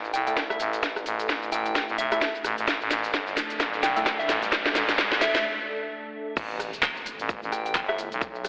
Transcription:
Already playing: A1 A3 E4 A4, riser
0.04 shaker
0.14 C2 G5, open hi-hat, shaker
0.27 A3 E4 A4 G5, closed hi-hat, shaker
0.37 kick, snare, closed hi-hat, shaker
0.50 E5, cross-stick, shaker
0.60 A1, open hi-hat, shaker
0.73 closed hi-hat, shaker
0.83 kick, snare, closed hi-hat, shaker
0.96 cross-stick, shaker
1.06 A1, open hi-hat, shaker
1.20 closed hi-hat, shaker
1.29 A1, kick, snare, shaker
1.43 shaker
1.52 A1 A3 E4 A4 G5, open hi-hat, shaker
1.65 G5, closed hi-hat, shaker
1.75 kick, snare, closed hi-hat, shaker
1.89 A1, shaker
1.98 B1 E5, open hi-hat, shaker
2.12 A3 E4 A4 E5, cross-stick, closed hi-hat, shaker
2.21 kick, snare, closed hi-hat, shaker
2.35 shaker
2.44 A1, cross-stick, open hi-hat, shaker
2.58 A1, closed hi-hat, shaker
2.68 A1 D4, kick, snare, closed hi-hat, shaker
2.81 A1, shaker
2.91 A1, snare, open hi-hat, shaker
3.04 closed hi-hat, shaker
3.14 G1, kick, snare, shaker
3.27 shaker
3.37 snare, open hi-hat, shaker
3.50 closed hi-hat, shaker
3.60 A1, kick, snare, closed hi-hat, shaker
3.73 shaker
3.83 C2 G5, snare, open hi-hat, shaker
3.96 A3 E4 A4 G5, closed hi-hat, shaker
4.06 kick, snare, closed hi-hat, shaker
4.19 E5, shaker
4.29 A1, snare, open hi-hat, shaker
4.43 closed hi-hat, shaker
4.52 kick, snare, closed hi-hat, shaker
4.66 snare, shaker
4.75 A1, snare, open hi-hat, shaker
4.89 snare, closed hi-hat, shaker
4.98 A1, kick, snare, closed hi-hat, shaker
5.12 snare, shaker
5.21 E5, snare, open hi-hat, shaker
5.35 E5, snare, closed hi-hat, shaker
6.37 A1 A3 E4 A4, kick, closed hi-hat, crash, impact, shaker
6.50 shaker
6.60 cross-stick, open hi-hat, shaker
6.73 closed hi-hat, shaker
6.83 kick, clap, closed hi-hat, shaker
6.97 shaker
7.06 open hi-hat, shaker
7.20 A1, closed hi-hat, shaker
7.29 kick, closed hi-hat, shaker
7.43 A1, shaker
7.52 G5, cross-stick, open hi-hat, shaker
7.66 G5, closed hi-hat, shaker
7.75 G1, kick, clap, closed hi-hat, shaker
7.89 E5, cross-stick, shaker
7.98 open hi-hat, shaker
8.12 B1, closed hi-hat, shaker
8.21 kick, closed hi-hat, shaker
8.35 shaker
8.45 cross-stick, open hi-hat, shaker

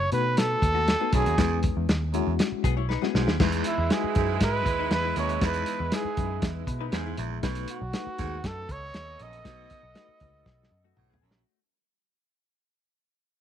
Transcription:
0.12 B2 A3 D#4 F#4 B4, closed hi-hat
0.37 A4, snare, closed hi-hat
0.62 D#2, kick, closed hi-hat
0.75 A3 F#4
0.88 snare, closed hi-hat
1.00 A3 B3 D#4 F#4 G#4 B4
1.13 B1 F#2 C#4 G#4 A4, kick, closed hi-hat
1.26 D#2 A3 F#4, closed hi-hat
1.37 E2 G#3 C#4 E4 B4, kick, snare, closed hi-hat
1.63 kick, closed hi-hat
1.77 E2
1.89 D#2, snare, closed hi-hat
2.13 F#2 G#3 C#4 E4 F#4, closed hi-hat
2.27 E2
2.39 snare, closed hi-hat
2.52 muted picked electric bass stroke
2.64 B1 B3 G#4, kick, closed hi-hat
2.77 E4 C#5
2.89 D#4 B4, snare
3.02 G#3 B3 C#4 E4 F#4 G#4, snare
3.15 B1 G#2, snare
3.27 D#2 G#3 E4, snare
3.40 E2 G#3 D#4 E4 B4, kick, snare, crash
3.52 closed hi-hat
3.64 E4, closed hi-hat
3.78 E2
3.90 G#3 D#4 E4 F#4 G#4, snare, closed hi-hat
4.04 muted picked electric bass stroke
4.15 F#2 G#2, kick, closed hi-hat
4.41 G#2 B4, kick, snare, closed hi-hat
4.66 D#2, kick, closed hi-hat
4.79 D#4 B4
4.91 E2 B3 G#4 B4, snare, closed hi-hat
5.05 G#3 E4
5.16 D#2 F#2 C#5, closed hi-hat
5.29 closed hi-hat
5.41 E2 G#3 D#4 E4 B4, kick, snare, closed hi-hat
5.45 B4
5.54 closed hi-hat
5.66 closed hi-hat
5.80 E2
5.92 G#3 D#4 E4 G#4 B4, snare, closed hi-hat
6.05 muted picked electric bass stroke
6.17 F#2, kick, closed hi-hat
6.42 E2, kick, snare, closed hi-hat
6.67 B2 B5, kick, closed hi-hat
6.81 D#4 B4
6.92 E2 G#2 B3 G#4 G#5, snare, closed hi-hat
7.06 G#3 E4
7.17 A#1 E2 E5, closed hi-hat
7.43 B1 B2 A3 D#4 F#4 B4, kick, snare, closed hi-hat
7.55 closed hi-hat
7.68 F#4, closed hi-hat
7.82 B1
7.93 A3 D#4 F#4 B4, snare, closed hi-hat
8.07 muted picked electric bass stroke
8.18 D#2 G#2, kick, closed hi-hat
8.43 F#2 B3 A4 D#5, kick, snare, closed hi-hat
8.69 C#2 C#5, kick, closed hi-hat
8.94 D#2, snare, closed hi-hat
9.19 A#1 F#2 D#5, closed hi-hat
9.33 closed hi-hat
9.44 B1 B2 A3 D#4 F#4 B4, kick, snare, closed hi-hat
9.70 kick, closed hi-hat
9.83 B1
9.95 A3 D#4 F#4 B4, snare, closed hi-hat
10.09 muted picked electric bass stroke
10.20 C#2, kick, closed hi-hat
10.46 B1, kick, snare
10.63 snare
10.71 F#2 D#5
10.84 A3 F#4
10.97 B1 A2 F#5, mid tom
11.10 B3 G#4, floor tom
11.21 A#1 F#2 C#4 A4 G#5
11.31 snare
11.35 A3 F#4

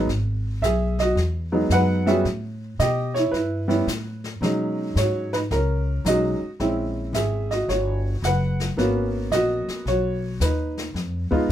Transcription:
0.07 G#1, brush sweep, snare
0.62 B1 G#4 E5, snare, hi-hat pedal
0.99 F#4 D#5, snare
1.16 E2, brush sweep, snare
1.52 F#3 G#3 B3 D#4
1.70 F#2 F#5, snare, hi-hat pedal
1.74 B4
2.06 G3 B3 C#4 F#4 G#4 E5, snare
2.25 A2, brush sweep, snare
2.79 B2 G4 D#5, snare, hi-hat pedal
3.14 E4 C#5, snare
3.31 G2 B4, brush sweep, snare
3.36 E4
3.68 G3 B3 C#4 E4, snare
3.87 A2, snare, hi-hat pedal
4.24 snare
4.41 B2 F#3 G#3 C#4 D#4, brush sweep, snare
4.96 G#2 C#5, snare, hi-hat pedal
5.00 F#4
5.33 D#4 B4, snare
5.51 C#2 C#4 A#4, brush sweep, snare
6.05 B1 F#3 G#3 C#4 D#4 F#4 D#5, snare, hi-hat pedal
6.41 muted upright bass stroke
6.60 A#1 G#3 C4 C#4 E4, brush sweep, snare
7.13 G#1 G#4 E5, snare, hi-hat pedal
7.51 F#4 D#5, snare
7.68 G1 F#4 C#5, brush sweep, snare
8.22 F#1 F#5, snare, hi-hat pedal
8.26 B4
8.60 snare
8.77 G#1 A#3 B3 C#4 F#4, brush sweep, snare
9.31 A#1 F#4 D#5, snare, hi-hat pedal
9.67 muted upright bass stroke, snare
9.85 B1 F#4 C#5, brush sweep, snare
10.40 D#2 D#4 B4, snare, hi-hat pedal
10.78 snare
10.94 F2, brush sweep, snare
11.31 G#3 B3 D#4 F4, muted upright bass stroke, kick

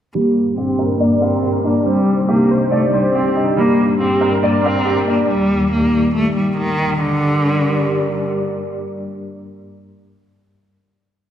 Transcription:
0.14 G2 G3 A#3 D4
0.58 C4 G4
0.79 A#4
1.00 A#3 D5
1.22 C4 A#4
1.43 G4
1.64 A#3 D4
1.86 C3 G3 C4 D4 D#4
2.28 A#3 G4
2.51 C5
2.71 A3 D5
2.93 G3 C5
3.15 C4 G4
3.36 D#4
3.57 G2 G3 A#3
4.00 C4 G4
4.21 A#4
4.43 A#3 D5
4.64 C4 A#4
4.85 G4
5.08 A#3 D4
5.29 D#2 D#3 G3
5.72 A#3
6.15 A3
6.36 G3
6.58 D#3
7.00 D3 G3 G4 A#4 D5

